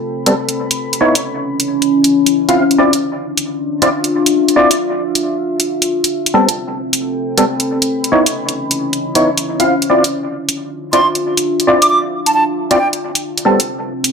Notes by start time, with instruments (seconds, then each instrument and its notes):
Already playing: ambient pad C4 A4 G5 B5
0.26 synth stab G3 B3 C4 A4, closed hi-hat
0.49 closed hi-hat
0.71 closed hi-hat
0.78 ambient pad C#4
0.93 closed hi-hat
1.01 synth stab B3 D#4 E4 C#5
1.06 ambient pad E4 D#5
1.15 closed hi-hat
1.60 closed hi-hat
1.82 closed hi-hat
2.04 closed hi-hat
2.26 closed hi-hat
2.49 synth stab C4 E4 F4 F5, closed hi-hat
2.56 ambient pad D4
2.71 closed hi-hat
2.78 synth stab C4 E4 F4 D5
2.92 ambient pad F4, closed hi-hat
3.05 ambient pad E5 C6
3.38 closed hi-hat
3.82 synth stab C4 E4 F4 D5, closed hi-hat
4.04 closed hi-hat
4.26 closed hi-hat
4.48 closed hi-hat
4.56 synth stab C4 E4 F4 D5
4.71 closed hi-hat
5.15 closed hi-hat
5.60 closed hi-hat
5.82 closed hi-hat
6.04 closed hi-hat
6.12 ambient pad C4
6.26 closed hi-hat
6.33 synth stab G3 B3 C4 A4, ambient pad A4
6.48 ambient pad G5, closed hi-hat
6.83 ambient pad B5
6.93 closed hi-hat
7.38 synth stab G3 B3 C4 A4, closed hi-hat
7.60 closed hi-hat
7.82 closed hi-hat
7.90 ambient pad C#4
8.01 ambient pad E4 D#5, closed hi-hat
8.12 synth stab B3 D#4 E4 C#5
8.26 closed hi-hat
8.49 closed hi-hat
8.71 closed hi-hat
8.93 closed hi-hat
9.15 synth stab B3 D#4 E4 C#5, closed hi-hat
9.38 closed hi-hat
9.60 synth stab C4 E4 F4 F5, closed hi-hat
9.68 ambient pad D4
9.80 ambient pad F4, closed hi-hat
9.90 synth stab C4 E4 F4 D5
10.04 closed hi-hat
10.11 ambient pad E5
10.23 ambient pad C6
10.49 closed hi-hat
10.93 synth stab C4 E4 F4 D5, flute C6, closed hi-hat
11.15 closed hi-hat
11.37 closed hi-hat
11.60 closed hi-hat
11.67 synth stab C4 E4 F4 D5
11.82 flute D6, closed hi-hat
11.90 flute D6
12.26 flute A5, closed hi-hat
12.34 flute A5
12.71 synth stab C4 E4 F4 D5, flute G5, closed hi-hat
12.79 flute G5
12.93 closed hi-hat
13.15 closed hi-hat
13.23 ambient pad C4
13.38 closed hi-hat
13.45 synth stab G3 B3 C4 A4
13.59 ambient pad A4, closed hi-hat
13.66 ambient pad B5
13.76 ambient pad G5
14.04 closed hi-hat